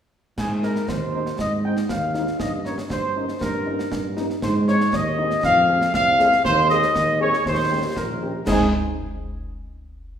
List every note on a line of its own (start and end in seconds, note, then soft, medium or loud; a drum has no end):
0.37 0.80 G#2 medium
0.37 0.49 G#4 medium
0.37 concert bass drum medium
0.37 snare medium
0.37 crash soft
0.63 0.73 G#3 soft
0.63 0.73 C4 soft
0.63 0.73 D#4 medium
0.63 0.87 A#4 medium
0.63 snare soft
0.76 snare soft
0.88 1.31 D#2 medium
0.88 1.39 C5 medium
0.88 concert bass drum medium
0.88 snare medium
1.13 1.22 G#3 soft
1.13 1.23 C4 medium
1.13 1.23 D#4 soft
1.26 snare soft
1.39 1.81 G#2 medium
1.39 1.51 D#5 medium
1.39 concert bass drum medium
1.39 snare medium
1.64 1.73 G#3 soft
1.64 1.73 C4 soft
1.64 1.73 D#4 soft
1.64 1.76 G5 medium
1.77 snare medium
1.89 2.32 D#2 medium
1.89 2.37 F5 medium
1.89 concert bass drum medium
1.89 snare medium
2.14 2.24 G#3 soft
2.14 2.24 C4 soft
2.14 2.24 D#4 medium
2.14 snare soft
2.27 snare soft
2.39 2.82 G2 medium
2.39 2.51 D#5 medium
2.39 concert bass drum medium
2.39 snare medium
2.65 2.74 A#3 soft
2.65 2.74 C#4 soft
2.65 2.74 D#4 medium
2.65 2.77 C#5 medium
2.65 snare soft
2.78 snare medium
2.90 3.33 G2 medium
2.90 3.38 C5 medium
2.90 concert bass drum medium
2.90 snare medium
3.16 3.25 A#3 medium
3.16 3.25 C#4 medium
3.16 3.25 D#4 soft
3.28 snare soft
3.41 3.83 G2 medium
3.41 4.13 A#4 medium
3.41 concert bass drum medium
3.41 snare medium
3.66 3.76 A#3 medium
3.66 3.75 C#4 medium
3.66 3.76 D#4 medium
3.79 snare medium
3.91 4.34 G2 medium
3.91 concert bass drum medium
3.91 snare medium
4.17 4.26 A#3 medium
4.17 4.26 C#4 medium
4.17 4.26 D#4 medium
4.17 snare soft
4.30 snare soft
4.42 4.84 G#2 medium
4.42 4.54 C5 medium
4.42 concert bass drum medium
4.42 snare medium
4.42 crash soft
4.67 4.77 G#3 medium
4.67 4.77 C4 medium
4.67 4.77 D#4 medium
4.67 4.92 C#5 medium
4.67 snare soft
4.80 snare soft
4.93 5.35 D#2 medium
4.93 5.44 D#5 loud
4.93 concert bass drum medium
4.93 snare medium
5.18 5.27 G#3 medium
5.18 5.28 C4 medium
5.18 5.27 D#4 medium
5.31 snare soft
5.43 5.86 F2 medium
5.43 5.91 F5 loud
5.43 concert bass drum medium
5.43 snare medium
5.69 5.78 G#3 medium
5.69 5.78 C4 medium
5.69 5.78 G#4 medium
5.81 snare medium
5.94 6.36 C2 medium
5.94 6.42 F5 loud
5.94 concert bass drum medium
5.94 snare medium
6.19 6.29 G#3 medium
6.19 6.29 C4 medium
6.19 6.29 G#4 medium
6.19 snare medium
6.32 snare soft
6.45 6.87 D#2 medium
6.45 6.69 C5 loud
6.45 concert bass drum medium
6.45 snare medium
6.70 6.80 G#3 medium
6.70 6.79 C4 medium
6.70 6.79 G#4 medium
6.70 7.17 D#5 loud
6.70 snare medium
6.83 snare medium
6.95 7.33 D#2 medium
6.95 concert bass drum medium
6.95 snare medium
7.21 7.30 G#3 medium
7.21 7.30 C4 medium
7.21 7.30 G#4 medium
7.21 7.45 C#5 loud
7.33 snare soft
7.46 7.88 D#2 medium
7.46 7.93 C5 loud
7.46 concert bass drum medium
7.46 snare medium
7.71 7.80 A#3 medium
7.71 7.80 C#4 medium
7.71 7.80 G4 medium
7.96 8.38 A#1 medium
7.96 8.44 A#4 medium
7.96 concert bass drum medium
7.96 snare medium
8.21 8.31 A#3 medium
8.21 8.31 C#4 medium
8.21 8.31 G4 medium
8.46 8.68 G#2 medium
8.46 8.69 G#3 medium
8.46 8.69 C4 medium
8.46 8.69 D#4 medium
8.46 8.68 G#4 medium
8.46 concert bass drum loud
8.46 snare medium
8.46 crash medium